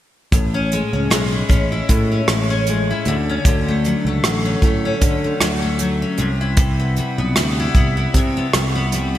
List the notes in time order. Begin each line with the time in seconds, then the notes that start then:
0.32 A1 A2, kick, closed hi-hat
0.54 C#4
0.72 G#3, closed hi-hat
0.93 C#2 C#4
1.10 B1 G#3, cross-stick, closed hi-hat
1.32 E4
1.49 A1 C#4, kick, closed hi-hat
1.72 E4
1.89 A2, kick, closed hi-hat
2.12 C#4
2.28 A1 G#3, cross-stick, closed hi-hat
2.50 C#4
2.66 G#3, closed hi-hat
2.91 E4
3.05 D2 D3, closed hi-hat
3.29 C#4
3.45 D2 D3, kick, closed hi-hat
3.68 A3
3.84 F#3, closed hi-hat
4.05 C#2 A3
4.23 A1 F#3, cross-stick, closed hi-hat
4.45 C#4
4.62 A2 A3, kick, closed hi-hat
4.85 C#4
5.01 D3, kick, closed hi-hat
5.24 A3
5.41 D2 F#3, cross-stick, closed hi-hat
5.62 A3
5.79 F#3, closed hi-hat
6.02 C#4
6.18 C2 C3, closed hi-hat
6.41 E4
6.57 C3, kick, closed hi-hat
6.80 B3
6.96 G3, closed hi-hat
7.18 B1 B3
7.36 D2 G3, cross-stick, closed hi-hat
7.60 E4
7.75 C2 B3, kick, closed hi-hat
7.97 E4
8.14 C3, kick, closed hi-hat
8.37 B3
8.53 C2 G3, cross-stick, closed hi-hat
8.75 B3
8.92 G3, closed hi-hat
9.15 E4